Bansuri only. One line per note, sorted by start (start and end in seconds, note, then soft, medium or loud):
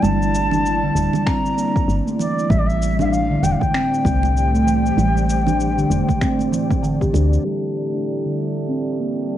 0.02 1.28 A5 loud
1.26 1.93 A#5 loud
2.19 2.51 D5 medium
2.50 2.60 E5 medium
2.58 2.68 D5 medium
2.67 2.99 E5 medium
3.00 3.06 F5 loud
3.05 3.13 E5 medium
3.11 3.44 F5 loud
3.43 3.53 G5 medium
3.52 3.61 F5 medium
3.60 6.83 G5 loud